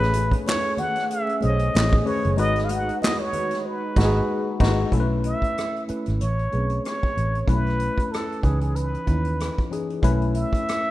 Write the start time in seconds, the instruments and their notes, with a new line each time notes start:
Already playing: fingered electric bass A1, tine electric piano A3 C#4 G#4 B4, analog synth pad A3 C#4 G#4, muted trumpet B4
0.00 snare, closed hi-hat, muted conga
0.13 closed hi-hat, high conga
0.31 kick, closed hi-hat
0.46 muted trumpet C#5, snare, clap, closed hi-hat, high conga
0.65 muted conga
0.77 muted trumpet F#5, closed hi-hat, high conga, low conga
0.96 snare, closed hi-hat
1.10 muted trumpet E5, closed hi-hat
1.27 closed hi-hat, muted conga
1.41 fingered electric bass B1, tine electric piano A3 C#4 G#4 C5, muted trumpet D#5, closed hi-hat, high conga
1.50 tine electric piano C#5
1.59 closed hi-hat
1.74 fingered electric bass A1, snare, clap, closed hi-hat, muted conga
1.91 kick, high conga
2.05 tine electric piano A3 C#4 G#4 B4, muted trumpet C#5, open hi-hat, low conga
2.23 fingered electric bass F#1, closed hi-hat, low conga
2.37 fingered electric bass G#1, tine electric piano G#3 D#4 F#4 B4, analog synth pad D#4 F#4 B4, muted trumpet D#5, closed hi-hat, muted conga
2.56 snare, closed hi-hat, muted conga
2.65 muted trumpet F5
2.69 muted trumpet F#5, closed hi-hat, high conga
2.89 closed hi-hat
3.02 muted trumpet D#5, snare, clap, closed hi-hat, muted conga, high conga
3.20 muted trumpet C#5, muted conga
3.33 closed hi-hat, high conga, low conga
3.51 snare, closed hi-hat
3.66 muted trumpet B4
3.96 fingered electric bass G#1, tine electric piano G#3 D#4 F#4, kick, snare, crash
4.05 tine electric piano G#4
4.60 fingered electric bass G#1, tine electric piano G#3 D#4 F#4 B4, kick, snare, crash
4.92 fingered electric bass B1, tine electric piano A3 C#4 E4 A4, kick, closed hi-hat
5.00 tine electric piano B4
5.24 muted trumpet E5, closed hi-hat
5.42 muted fingered electric bass stroke, kick, closed hi-hat
5.58 cross-stick, closed hi-hat
5.76 closed hi-hat
5.88 tine electric piano A3 C#4 E4 B4, muted fingered electric bass stroke, closed hi-hat
6.06 fingered electric bass G#1, cross-stick, closed hi-hat
6.21 fingered electric bass A1, muted trumpet C#5, closed hi-hat
6.39 closed hi-hat
6.52 fingered electric bass B1, tine electric piano A3 C4 G#4 B4, closed hi-hat
6.59 tine electric piano C#4
6.70 closed hi-hat
6.85 muted trumpet C#5, cross-stick, closed hi-hat
7.03 kick
7.17 fingered electric bass A1, closed hi-hat
7.35 closed hi-hat
7.47 fingered electric bass B1, tine electric piano A3 C#4 E4 B4, muted trumpet B4, kick, closed hi-hat
7.66 cross-stick, closed hi-hat
7.80 closed hi-hat
7.98 muted fingered electric bass stroke, kick, closed hi-hat
8.12 muted trumpet A4, cross-stick, closed hi-hat
8.32 closed hi-hat
8.42 fingered electric bass C#2, tine electric piano E3 C#4 D#4 B4, muted trumpet G#4, kick, closed hi-hat
8.61 muted trumpet G#4, closed hi-hat
8.76 muted trumpet B4, closed hi-hat
8.94 closed hi-hat
9.07 fingered electric bass D#2, tine electric piano C#4 D#4 E4 B4, kick, closed hi-hat
9.25 closed hi-hat
9.40 cross-stick, closed hi-hat
9.58 kick, closed hi-hat
9.71 tine electric piano E3 C#4 D#4 G#4, closed hi-hat
9.90 closed hi-hat
10.02 fingered electric bass B1, tine electric piano A3 C#4 E4 B4, kick, closed hi-hat
10.22 closed hi-hat
10.35 muted trumpet E5, closed hi-hat
10.53 muted fingered electric bass stroke, kick, closed hi-hat
10.68 cross-stick, closed hi-hat